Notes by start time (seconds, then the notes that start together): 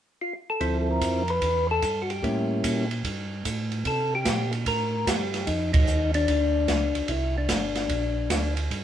0.21 F4
0.50 A4
0.60 D2 F3 C4 E4, kick, ride
0.81 A4
0.91 A#4
1.01 F2, kick, hi-hat pedal, ride
1.28 B4, ride
1.42 E2, kick, ride
1.71 A4
1.82 G2, kick, hi-hat pedal, ride
2.02 F#4
2.10 G4, ride
2.23 A2 G3 A#3 C#4 E4, kick, ride
2.64 A#2, kick, hi-hat pedal, ride
2.91 ride
3.04 G2, kick, ride
3.45 A2, kick, hi-hat pedal, ride
3.72 ride
3.85 C3 A4, kick, ride
4.15 G4
4.25 A#2, kick, snare, hi-hat pedal, ride
4.53 ride
4.66 A2 A#4, kick, ride
5.07 G2 G4, kick, snare, hi-hat pedal, ride
5.34 snare, ride
5.47 F2 D#4, kick, ride
5.73 D#4, kick, ride
5.87 D#2, hi-hat pedal
6.14 D4, ride
6.28 D2, kick, ride
6.68 C#2, kick, snare, hi-hat pedal, ride
6.95 C#2, ride
7.08 C2 E4, kick, ride
7.38 D4
7.49 G1, kick, snare, hi-hat pedal, ride
7.75 snare, ride
7.89 A#1, kick, ride
8.30 D2, kick, snare, hi-hat pedal, ride
8.57 ride
8.70 G2, kick, ride